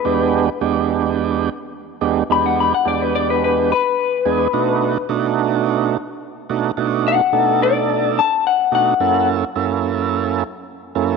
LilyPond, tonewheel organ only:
\new Staff \with { instrumentName = "Tonewheel organ" } { \time 4/4 \key e \major \tempo 4 = 107 <e, gis b d' g'>4 <e, gis b d' g'>4. r4 <e, gis b d' g'>8 | <e, gis b d' g'>4 <e, gis b d' g'>4. r4 <e, gis b d' gis'>8 | <b, a d' dis' fis'>4 <b, a d' dis' fis'>4. r4 <b, a d' dis' fis'>8 | <b, a d' dis' fis'>4 <b, a d' dis' a'>4. r4 <b, a d' dis' fis'>8 |
<fis, ais cis' e' a'>4 <fis, ais cis' e' a'>4. r4 <fis, ais cis' e' a'>8 | }